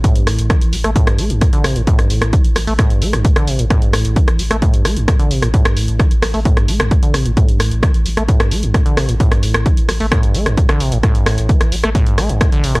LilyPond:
<<
  \new Staff \with { instrumentName = "Acid bass" } { \clef bass \time 4/4 \key a \minor \tempo 4 = 131 a,16 g,16 a,8 e8 g16 a16 a,16 g,16 a16 g,16 a,16 d16 c16 a,16 | a,16 g,16 a,8 e8 g16 a16 a,16 g,16 a16 g,16 a,16 d16 c16 a,16 | a,16 g,16 a,8 e8 g16 a16 a,16 g,16 a16 g,16 a,16 d16 c16 a,16 | a,16 g,16 a,8 e8 g16 a16 a,16 g,16 a16 g,16 a,16 d16 c16 a,16 |
a,16 g,16 a,8 e8 g16 a16 a,16 g,16 a16 g,16 a,16 d16 c16 a,16 | a,16 g,16 a,8 e8 g16 a16 a,16 g,16 a16 g,16 a,16 d16 c16 a,16 | a,16 g,16 a,8 e8 g16 a16 a,16 g,16 a16 g,16 a,16 d16 c16 a,16 | }
  \new Staff \with { instrumentName = "Sub bass" } { \clef bass \time 4/4 \key a \minor r16 a,,16 a,,16 a,,16 r16 a,,16 a,,16 a,,16 r16 a,,16 a,,16 a,,16 r16 a,,16 a,,16 a,,16 | r16 a,,16 a,,16 a,,16 r16 a,,16 a,,16 a,,16 r16 a,,16 a,,16 a,,16 r16 a,,16 a,,16 a,,16 | r16 a,,16 a,,16 a,,16 r16 a,,16 a,,16 a,,16 r16 a,,16 a,,16 a,,16 r16 a,,16 a,,16 a,,16 | r16 a,,16 a,,16 a,,16 r16 a,,16 a,,16 a,,16 r16 a,,16 a,,16 a,,16 r16 a,,16 a,,16 a,,16 |
r16 a,,16 a,,16 a,,16 r16 a,,16 a,,16 a,,16 r16 a,,16 a,,16 a,,16 r16 a,,16 a,,16 a,,16 | r16 a,,16 a,,16 a,,16 r16 a,,16 a,,16 a,,16 r16 a,,16 a,,16 a,,16 r16 a,,16 a,,16 a,,16 | r16 a,,16 a,,16 a,,16 r16 a,,16 a,,16 a,,16 r16 a,,16 a,,16 a,,16 r16 a,,16 a,,16 a,,16 | }
  \new DrumStaff \with { instrumentName = "Drums" } \drummode { \time 4/4 <hh bd>16 hh16 <hho ss>16 hh16 <hh bd ss>16 hh16 hho16 <hh ss>16 <hh bd>16 <hh ss>16 hho16 hh16 <hh bd ss>16 hh16 <hho ss>16 hh16 | <hh bd>16 <hh ss>16 hho16 <hh ss>16 <hh bd>16 hh16 <hho ss>16 hho16 <hh bd ss>16 hh16 hho16 <hh ss>16 <hh bd>16 <hh ss>16 hho16 hh16 | <hh bd ss>16 hh16 <hho ss>16 hh16 <hh bd>16 <hh ss>16 hho16 <hh ss>16 <hh bd>16 hh16 <hho ss>16 hh16 <hh bd ss>16 hh16 hho16 <hh ss>16 | <hh bd>16 <hh ss>16 hho16 hh16 <hh bd ss>16 hh16 <hho ss>16 hho16 <hh bd>16 <hh ss>16 hho16 <hh ss>16 <hh bd>16 hh16 <hho ss>16 hh16 |
<hh bd>16 hh16 <hho ss>16 hh16 <hh bd ss>16 hh16 hho16 <hh ss>16 <hh bd>16 <hh ss>16 hho16 hh16 <hh bd ss>16 hh16 <hho ss>16 hh16 | <hh bd>16 <hh ss>16 hho16 <hh ss>16 <hh bd>16 hh16 <hho ss>16 hho16 <hh bd ss>16 hh16 hho16 <hh ss>16 <hh bd>16 <hh ss>16 hho16 hh16 | <hh bd ss>16 hh16 <hho ss>16 hh16 <hh bd>16 <hh ss>16 hho16 <hh ss>16 <hh bd>16 hh16 <hho ss>16 hh16 <hh bd ss>16 hh16 hho16 <hh ss>16 | }
>>